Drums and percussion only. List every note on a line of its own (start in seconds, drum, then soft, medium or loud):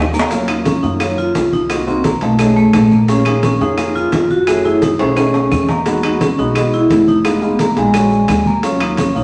0.02 low bongo medium
0.13 low bongo medium
0.13 maracas medium
0.19 low timbale loud
0.31 high bongo medium
0.31 high conga soft
0.31 high timbale medium
0.31 maracas medium
0.48 high conga soft
0.48 high timbale medium
0.48 claves medium
0.48 maracas soft
0.65 high bongo medium
0.65 high conga loud
0.65 high timbale medium
0.65 maracas medium
0.83 high conga soft
0.83 maracas soft
1.00 high bongo medium
1.00 high conga soft
1.00 high timbale medium
1.00 claves medium
1.00 maracas medium
1.18 high conga soft
1.18 maracas soft
1.35 high bongo medium
1.35 low bongo medium
1.35 high conga medium
1.35 high timbale medium
1.35 low timbale medium
1.35 maracas medium
1.52 high conga medium
1.52 maracas soft
1.70 high bongo medium
1.70 high conga soft
1.70 high timbale medium
1.70 claves medium
1.70 maracas medium
1.87 high bongo soft
1.87 high conga soft
1.87 maracas soft
2.04 high bongo medium
2.04 high conga medium
2.04 high timbale medium
2.04 maracas medium
2.21 high bongo soft
2.21 high conga soft
2.21 high timbale medium
2.21 maracas soft
2.39 high bongo medium
2.39 high conga soft
2.39 high timbale medium
2.39 claves medium
2.39 maracas medium
2.56 high bongo soft
2.56 high conga soft
2.56 maracas soft
2.73 high bongo medium
2.73 low bongo medium
2.73 high conga medium
2.73 high timbale medium
2.73 low timbale medium
2.73 claves medium
2.73 maracas medium
2.91 high conga medium
2.91 maracas soft
3.08 high bongo medium
3.08 high conga soft
3.08 high timbale medium
3.08 maracas medium
3.25 high conga soft
3.25 high timbale medium
3.25 claves medium
3.25 maracas soft
3.43 high bongo medium
3.43 high conga medium
3.43 high timbale medium
3.43 maracas medium
3.60 high conga soft
3.60 maracas soft
3.77 high bongo medium
3.77 high conga soft
3.77 high timbale medium
3.77 claves medium
3.77 maracas medium
3.95 high conga soft
3.95 maracas soft
4.12 high bongo medium
4.12 low bongo medium
4.12 high conga medium
4.12 high timbale medium
4.12 low timbale medium
4.12 maracas medium
4.30 high conga medium
4.30 maracas soft
4.47 high bongo medium
4.47 high conga soft
4.47 high timbale medium
4.47 claves medium
4.47 maracas medium
4.64 high bongo soft
4.64 high conga soft
4.64 maracas soft
4.82 high bongo medium
4.82 high conga medium
4.82 high timbale medium
4.82 maracas medium
4.99 high bongo soft
4.99 high conga soft
4.99 high timbale medium
4.99 maracas soft
5.16 high bongo medium
5.16 high conga soft
5.16 high timbale medium
5.16 claves medium
5.16 maracas medium
5.34 high bongo soft
5.34 high conga soft
5.34 low timbale medium
5.34 maracas soft
5.52 high bongo medium
5.52 low bongo medium
5.52 high conga medium
5.52 claves medium
5.52 maracas medium
5.69 high conga medium
5.69 low timbale medium
5.69 maracas soft
5.86 high bongo medium
5.86 high conga soft
5.86 high timbale medium
5.86 maracas medium
6.03 high conga soft
6.03 high timbale medium
6.03 claves medium
6.03 maracas soft
6.21 high bongo medium
6.21 high conga loud
6.21 high timbale medium
6.21 maracas medium
6.38 high conga soft
6.38 maracas soft
6.55 high bongo medium
6.55 high conga soft
6.55 high timbale medium
6.55 claves medium
6.55 maracas medium
6.73 high conga soft
6.73 maracas soft
6.90 high bongo medium
6.90 low bongo medium
6.90 high conga medium
6.90 high timbale medium
6.90 maracas medium
7.08 high conga medium
7.08 maracas soft
7.25 high bongo medium
7.25 high conga soft
7.25 high timbale medium
7.25 claves medium
7.25 maracas medium
7.42 high bongo soft
7.42 high conga soft
7.42 maracas soft
7.59 high bongo medium
7.59 high conga medium
7.59 high timbale medium
7.59 maracas medium
7.77 high bongo soft
7.77 high conga soft
7.77 high timbale medium
7.77 maracas soft
7.94 high bongo medium
7.94 high conga soft
7.94 high timbale medium
7.94 claves medium
7.94 maracas medium
8.11 high bongo soft
8.11 high conga soft
8.11 maracas soft
8.28 high bongo medium
8.28 low bongo medium
8.28 high conga medium
8.28 high timbale medium
8.28 claves medium
8.28 maracas medium
8.46 high conga medium
8.46 maracas soft
8.63 high bongo medium
8.63 high conga soft
8.63 high timbale medium
8.63 maracas medium
8.80 high conga soft
8.80 high timbale medium
8.80 claves medium
8.80 maracas soft
8.97 high bongo medium
8.97 high conga loud
8.97 high timbale medium
8.97 maracas medium
9.15 high conga soft
9.15 maracas soft